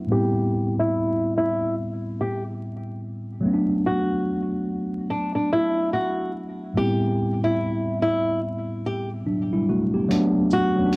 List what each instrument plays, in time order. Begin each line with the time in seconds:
Already playing: tine electric piano F#3 A3 B3 E4
0.07 tine electric piano A2 G3 B3
0.11 tine electric piano C4 E4, nylon-string guitar G4
0.79 nylon-string guitar E4
1.37 nylon-string guitar E4
2.21 nylon-string guitar G4
3.41 tine electric piano F#3 A3
3.45 tine electric piano B3 C#4
3.53 tine electric piano D4
3.86 nylon-string guitar F#4
5.10 nylon-string guitar D4
5.35 nylon-string guitar D4
5.53 nylon-string guitar E4
5.93 nylon-string guitar F#4
6.74 tine electric piano A2 G3 B3, nylon-string guitar G4
6.78 tine electric piano C4 E4
7.44 nylon-string guitar E4
8.03 nylon-string guitar E4
8.86 nylon-string guitar G4
9.27 tine electric piano F#3 D4
9.53 tine electric piano G3 E4
9.69 tine electric piano A3 F#4
9.94 tine electric piano B3 G4
10.09 tine electric piano F#3 A3 B3 D4, closed hi-hat
10.51 nylon-string guitar F#4, shaker
10.76 tine electric piano F#3 A3 B3 C#4
10.86 tine electric piano D4
10.93 closed hi-hat